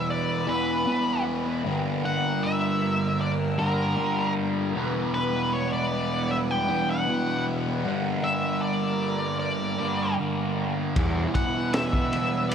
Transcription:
Already playing: distorted electric guitar E2 B2 E3, string section G3 B3 E4 B4
0.10 lead electric guitar D5
0.47 distorted electric guitar E2 B2 E3, lead electric guitar B4
0.86 distorted electric guitar E2 B2 E3
1.64 distorted electric guitar G2 D3 G3, string section A#3 D4 A#4
2.05 lead electric guitar F#5
2.43 lead electric guitar E5
3.21 lead electric guitar D5
3.58 distorted electric guitar G2 D3 G3, lead electric guitar A#4
3.97 distorted electric guitar G2 D3 G3
4.74 distorted electric guitar E2 B2 E3, string section B3 E4 B4
5.14 lead electric guitar B4
5.53 lead electric guitar C#5
5.73 lead electric guitar D5
6.31 lead electric guitar E5
6.51 lead electric guitar G5
6.68 distorted electric guitar E2 B2 E3
6.90 lead electric guitar F#5
7.08 distorted electric guitar E2 B2 E3
7.84 distorted electric guitar G2 D3 G3, string section A#3 D4 A#4
8.24 lead electric guitar E5
8.62 lead electric guitar D5
9.40 lead electric guitar D5
9.78 distorted electric guitar G2 D3 G3
10.18 distorted electric guitar G2 D3 G3
10.96 distorted electric guitar E2 B2 E3, picked electric bass E2, string section G3 B3 E4 B4, kick, ride
11.35 lead electric guitar F#5, kick, ride
11.73 lead electric guitar E5, snare, ride
11.93 kick, high conga
12.13 ride, high conga, low conga
12.49 lead electric guitar D5, ride

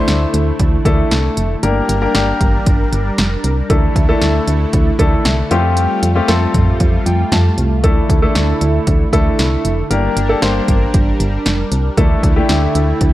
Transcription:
Already playing: analog synth pad D3 A3 E4, grand piano A3 D4 E4 C5
0.08 fm bass D2, snare, closed hi-hat
0.34 fm bass D2, closed hi-hat
0.60 fm bass D2, kick, closed hi-hat
0.85 fm bass D2, grand piano A3 D4 E4 A4, kick, closed hi-hat
1.11 fm bass C2, snare, closed hi-hat
1.37 fm bass F1, closed hi-hat
1.63 fm bass G1, analog synth pad G3 D4 A#4, grand piano A#3 D4 G4 A#4, closed hi-hat
1.89 fm bass G1, closed hi-hat
2.02 grand piano A#3 D4 G4 A#4
2.15 fm bass G1, grand piano A#3 D4 G4 A#4, snare, closed hi-hat
2.41 fm bass G1, kick, closed hi-hat
2.66 fm bass G1, kick, closed hi-hat
2.92 fm bass G1, closed hi-hat
3.18 fm bass F1, snare, closed hi-hat
3.44 fm bass C2, closed hi-hat
3.70 fm bass D2, analog synth pad D3 A3 E4, grand piano A3 D4 E4 A4, kick, closed hi-hat
3.96 fm bass D2, kick, closed hi-hat
4.09 grand piano A3 D4 E4 A4
4.22 fm bass D2, snare, closed hi-hat
4.48 fm bass D2, closed hi-hat
4.73 fm bass D2, kick, closed hi-hat
4.99 fm bass D2, grand piano A3 D4 E4 A4, kick, closed hi-hat
5.25 fm bass C2, snare, closed hi-hat
5.51 fm bass F2, analog synth pad G3 F4, grand piano A3 C4 F4 G4, closed hi-hat
5.77 closed hi-hat
6.03 fm bass F2, closed hi-hat
6.16 grand piano A3 C4 F4 G4
6.28 fm bass F2, grand piano A3 C4 F4 A4, snare, closed hi-hat
6.54 fm bass F2, kick, closed hi-hat, mid tom
6.80 fm bass F2, kick, closed hi-hat
7.06 fm bass F2, grand piano G5, closed hi-hat
7.32 fm bass F2, grand piano A5, snare, closed hi-hat, mid tom
7.58 fm bass C2, closed hi-hat
7.84 fm bass D2, analog synth pad D3 E4, grand piano A3 D4 E4 A4, kick, closed hi-hat
8.10 fm bass D2, kick, closed hi-hat
8.22 grand piano A3 D4 E4 A4
8.35 fm bass D2, snare, closed hi-hat
8.61 fm bass D2, closed hi-hat
8.87 fm bass D2, kick, closed hi-hat
9.13 fm bass D2, grand piano A3 D4 E4 A4, kick, closed hi-hat
9.39 fm bass C2, snare, closed hi-hat
9.65 fm bass F1, closed hi-hat
9.91 fm bass G1, analog synth pad G3 D4 A#4, grand piano A#3 D4 G4 A#4, closed hi-hat
10.16 fm bass G1, closed hi-hat
10.29 grand piano A#3 D4 G4 A4
10.42 fm bass G1, grand piano A#3 D4 G4 C5, snare, closed hi-hat
10.68 fm bass G1, kick, closed hi-hat
10.94 fm bass G1, kick, closed hi-hat
11.20 fm bass G1, closed hi-hat
11.46 fm bass F1, snare, closed hi-hat
11.72 fm bass C2, closed hi-hat
11.97 fm bass D2, analog synth pad D3 A3 E4, grand piano A3 D4 E4 A4, kick, closed hi-hat
12.23 fm bass D2, kick, closed hi-hat
12.36 grand piano A3 D4 E4 G4
12.49 fm bass D2, snare, closed hi-hat
12.75 fm bass D2, closed hi-hat
13.01 fm bass D2, kick, closed hi-hat

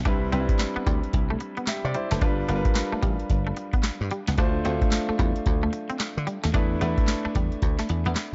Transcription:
0.05 slap bass C2, grand piano G3 C4 E4 B4, clean electric guitar D4, kick, closed hi-hat
0.32 slap bass C2, grand piano G3 C4 D4 B4, clean electric guitar C4, closed hi-hat
0.40 grand piano E4
0.49 muted clean electric guitar stroke, kick, closed hi-hat
0.59 muted clean electric guitar stroke, snare, clap, closed hi-hat
0.76 clean electric guitar B3, muted slap bass stroke
0.86 slap bass D2, clean electric guitar G3, kick, closed hi-hat
1.03 closed hi-hat
1.13 slap bass C2, kick, closed hi-hat
1.30 clean electric guitar A3
1.40 muted clean electric guitar stroke, closed hi-hat
1.57 clean electric guitar B3, closed hi-hat
1.67 grand piano G4 E5, muted clean electric guitar stroke, snare, clap, closed hi-hat
1.85 slap bass C3, grand piano D5
1.94 clean electric guitar G3, grand piano E4 C5, closed hi-hat
2.11 slap bass F#1, clean electric guitar A3, grand piano D4 B4, snare, closed hi-hat
2.21 slap bass G1, grand piano G3 D4 F4 B4, clean electric guitar D4, kick, closed hi-hat
2.48 slap bass G1, grand piano G3 D4 F4 A#4, clean electric guitar B3, closed hi-hat
2.56 grand piano B4
2.65 muted clean electric guitar stroke, kick, closed hi-hat
2.75 muted clean electric guitar stroke, snare, clap, closed hi-hat
2.92 clean electric guitar A3, muted slap bass stroke
3.02 slap bass A1, clean electric guitar G3, kick, closed hi-hat
3.19 closed hi-hat
3.30 slap bass G1, kick, closed hi-hat
3.47 clean electric guitar A3
3.56 muted clean electric guitar stroke, closed hi-hat
3.73 clean electric guitar B3, kick, closed hi-hat
3.83 muted clean electric guitar stroke, snare, clap, closed hi-hat
4.01 slap bass G2
4.11 clean electric guitar G3, closed hi-hat
4.27 slap bass C#2, clean electric guitar B3, snare, closed hi-hat
4.38 slap bass D2, grand piano A3 D4 F4 C5, clean electric guitar D4, kick, closed hi-hat
4.64 slap bass D2, grand piano A3 D4 F4 C5, clean electric guitar C4, closed hi-hat
4.81 muted clean electric guitar stroke, kick, closed hi-hat
4.92 muted clean electric guitar stroke, snare, clap, closed hi-hat
5.09 clean electric guitar A3, muted slap bass stroke
5.19 slap bass E2, clean electric guitar G3, kick, closed hi-hat
5.36 closed hi-hat
5.46 slap bass D2, kick, closed hi-hat
5.63 clean electric guitar A3
5.73 muted clean electric guitar stroke, closed hi-hat
5.89 clean electric guitar C4, closed hi-hat
6.00 muted clean electric guitar stroke, snare, clap, closed hi-hat
6.17 slap bass D3
6.27 clean electric guitar G3, closed hi-hat
6.44 slap bass D#2, clean electric guitar A3, snare, closed hi-hat
6.54 slap bass E2, grand piano A3 D4 E4 B4, clean electric guitar D4, kick, closed hi-hat
6.81 slap bass E2, grand piano A3 D4 E4 B4, clean electric guitar B3, closed hi-hat
6.97 muted clean electric guitar stroke, kick, closed hi-hat
7.08 muted clean electric guitar stroke, snare, clap, closed hi-hat
7.25 clean electric guitar A3, muted slap bass stroke
7.35 slap bass E2, clean electric guitar G3, kick, closed hi-hat
7.52 closed hi-hat
7.62 slap bass D2, kick, closed hi-hat
7.79 clean electric guitar A3, snare
7.89 slap bass E2, muted clean electric guitar stroke, closed hi-hat
8.05 slap bass E2, clean electric guitar B3, closed hi-hat
8.16 muted clean electric guitar stroke, snare, clap, closed hi-hat

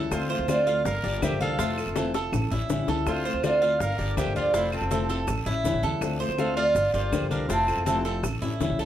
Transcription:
Already playing: upright bass C#2, nylon-string guitar E3 G3 C#4 E4, cuban tres A4
0.11 upright bass D2, nylon-string guitar D3 A3 C4 F4, trumpet F4, resonator guitar played with a steel bar C5, high bongo, high conga, long guiro, claves, maracas
0.30 nylon-string guitar A3 C4 F4, cuban tres C5, high conga, maracas
0.39 upright bass D2
0.48 nylon-string guitar D3 A3 C4 F4, trumpet F4, resonator guitar played with a steel bar D5, high bongo, high conga, short guiro, claves, maracas
0.67 nylon-string guitar A3 C4 F4, cuban tres F5, high bongo, high conga, short guiro, maracas
0.85 upright bass G1, trumpet A#4, resonator guitar played with a steel bar F5, muted nylon-string guitar stroke, high bongo, high conga, long guiro, maracas
1.03 upright bass G1, nylon-string guitar A#3 D4 G4, cuban tres D5, high bongo, high conga, maracas
1.22 upright bass D2, nylon-string guitar D3 F3 A#3 D4 G4, trumpet G4, resonator guitar played with a steel bar E5, high bongo, low bongo, high conga, short guiro, claves, maracas
1.31 upright bass G1
1.40 upright bass C2, trumpet A4, cuban tres F5, resonator guitar played with a steel bar F5, high bongo, high conga, short guiro, maracas
1.59 upright bass F1, nylon-string guitar C3 E3 A3 C4 F4, cuban tres F4, high bongo, high conga, long guiro, maracas
1.77 nylon-string guitar A3 C4 F4, high conga, claves, maracas
1.86 upright bass F1
1.96 nylon-string guitar C3 E3 A3 C4 F4, cuban tres A4, high bongo, high conga, short guiro, maracas
2.14 nylon-string guitar A3 F4, cuban tres A4, high bongo, high conga, short guiro, maracas
2.32 upright bass A1, muted nylon-string guitar stroke, low bongo, high conga, low conga, long guiro, claves, maracas
2.51 upright bass A1, nylon-string guitar G3 C#4 E4, cuban tres E4, high conga, low conga, maracas
2.70 upright bass A1, nylon-string guitar E3 G3 C#4 E4, low bongo, high conga, short guiro, maracas
2.88 upright bass C#2, cuban tres A4, low bongo, high conga, short guiro, maracas
3.06 upright bass D2, nylon-string guitar D3 A3 C4 F4, trumpet F4, resonator guitar played with a steel bar C5, high bongo, long guiro, claves, maracas
3.25 nylon-string guitar A3 C4 F4, cuban tres C5, high conga, maracas
3.34 upright bass D2
3.44 nylon-string guitar D3 A3 C4 F4, trumpet F4, resonator guitar played with a steel bar D5, high bongo, high conga, short guiro, claves, maracas
3.62 nylon-string guitar A3 C4 F4, cuban tres F5, high bongo, short guiro, maracas
3.80 upright bass G1, trumpet A#4, resonator guitar played with a steel bar F5, muted nylon-string guitar stroke, high bongo, high conga, long guiro, maracas
3.99 upright bass G1, nylon-string guitar A#3 D4 G4, cuban tres D5, high bongo, high conga, maracas
4.17 upright bass D2, nylon-string guitar D3 F3 A#3 D4 G4, trumpet G4, resonator guitar played with a steel bar E5, high bongo, low bongo, high conga, short guiro, claves, maracas
4.26 upright bass G1
4.35 upright bass D2, trumpet F4, resonator guitar played with a steel bar D5, cuban tres F5, high bongo, high conga, short guiro, maracas
4.54 upright bass F1, nylon-string guitar C3 E3 A3 C4 F4, trumpet E4, cuban tres F4, resonator guitar played with a steel bar C5, high bongo, long guiro, maracas
4.73 nylon-string guitar A3 C4 F4, trumpet C4, resonator guitar played with a steel bar A4, high conga, claves, maracas
4.81 upright bass F1
4.91 nylon-string guitar C3 E3 A3 C4 F4, cuban tres A4, high bongo, high conga, short guiro, maracas
5.09 nylon-string guitar A3 C4 F4, cuban tres A4, high bongo, high conga, short guiro, maracas
5.27 upright bass A1, muted nylon-string guitar stroke, high bongo, high conga, low conga, long guiro, claves, maracas
5.46 upright bass A1, nylon-string guitar G3 C#4 E4, cuban tres E4, high bongo, high conga, low conga, maracas
5.64 upright bass E2, nylon-string guitar E3 G3 C#4 E4, high bongo, low bongo, high conga, short guiro, maracas
5.74 upright bass A1
5.83 upright bass E2, cuban tres A4, high bongo, high conga, short guiro, maracas
6.01 upright bass D2, nylon-string guitar D3 A3 C4 F4, high bongo, long guiro, claves, maracas
6.20 nylon-string guitar A3 C4 F4, cuban tres C5, high conga, maracas
6.29 upright bass D2
6.38 nylon-string guitar D3 A3 C4 F4, trumpet A4, resonator guitar played with a steel bar F5, high bongo, high conga, short guiro, claves, maracas
6.57 nylon-string guitar A3 C4 F4, trumpet F4, resonator guitar played with a steel bar D5, cuban tres F5, high bongo, high conga, short guiro, maracas
6.75 upright bass G1, muted nylon-string guitar stroke, high bongo, high conga, long guiro, maracas
6.94 upright bass G1, nylon-string guitar A#3 D4 G4, trumpet F4, resonator guitar played with a steel bar C5, cuban tres D5, high bongo, high conga, maracas
7.12 upright bass D2, nylon-string guitar D3 F3 A#3 D4 G4, high bongo, low bongo, high conga, short guiro, claves, maracas
7.21 upright bass G1
7.30 upright bass C2, trumpet D4, resonator guitar played with a steel bar A#4, cuban tres F5, high bongo, high conga, short guiro, maracas
7.49 upright bass F1, nylon-string guitar C3 E3 A3 C4 F4, trumpet C4, cuban tres F4, resonator guitar played with a steel bar A4, high bongo, high conga, long guiro, maracas
7.68 nylon-string guitar A3 C4 F4, high conga, claves, maracas
7.77 upright bass F1
7.86 nylon-string guitar C3 E3 A3 C4 F4, trumpet C4, resonator guitar played with a steel bar A4, cuban tres A4, high bongo, high conga, short guiro, maracas
8.05 nylon-string guitar A3 C4 F4, cuban tres A4, high bongo, short guiro, maracas
8.23 upright bass A1, muted nylon-string guitar stroke, high bongo, high conga, low conga, long guiro, claves, maracas
8.42 upright bass A1, nylon-string guitar G3 C#4 E4, cuban tres E4, high bongo, high conga, low conga, maracas
8.60 upright bass E2, nylon-string guitar E3 G3 C#4 E4, high bongo, low bongo, high conga, short guiro, maracas
8.70 upright bass A1
8.79 upright bass C#2, cuban tres A4, high bongo, short guiro, maracas

